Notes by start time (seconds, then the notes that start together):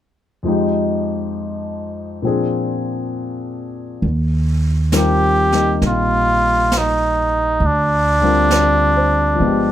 0.43 F2 F3 G#3
0.47 D#4 G4
2.22 A#2 F3 C4
2.26 D4 G#4
4.02 D#2, brush sweep
4.92 D#3 G3 C4 F4 A#4, snare, hi-hat pedal
4.97 G4
5.52 G3 A#3 D#4 G4, snare
5.82 A#1, brush sweep, snare
5.87 F4
6.72 snare, hi-hat pedal
6.78 D#4
7.60 D2, brush sweep
7.66 D4
8.21 D3 G3 C4 F4
8.26 A#4
8.51 D5, snare, hi-hat pedal
8.97 C5
9.36 F3 G#3
9.40 G1 B3 D4, brush sweep
9.46 G4